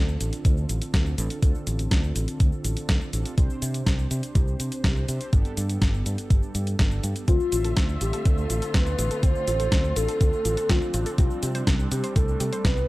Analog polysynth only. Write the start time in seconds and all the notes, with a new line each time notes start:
Already playing: D3 C4 D4 F4 A4
1.18 D3 C4 D4 F4 A4
1.43 D3 C4 D4 F4 A4
3.13 C3 C4 D4 F4 A4
3.38 C3 C4 D4 G4 C5
5.08 C4 D4 G4 C5
5.33 G2 B3 D4 G4 A4
6.79 G2 B3 D4 G4 A4